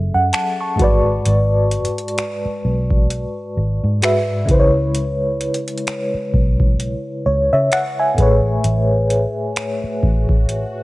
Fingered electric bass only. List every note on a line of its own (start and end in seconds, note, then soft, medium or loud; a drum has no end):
0.15 0.30 F#2 medium
0.80 1.18 G#1 medium
1.26 1.87 G#1 loud
2.46 muted fingered electric bass stroke soft
2.65 3.25 B1 medium
3.57 3.79 G#1 medium
3.84 4.00 G#2 medium
4.49 5.48 C#2 medium
6.14 muted fingered electric bass stroke soft
6.34 6.94 B1 medium
7.26 7.48 C#2 medium
7.53 7.69 C#3 medium
8.18 8.56 A1 medium
8.64 9.25 A1 loud
9.84 muted fingered electric bass stroke soft
10.03 10.64 A1 medium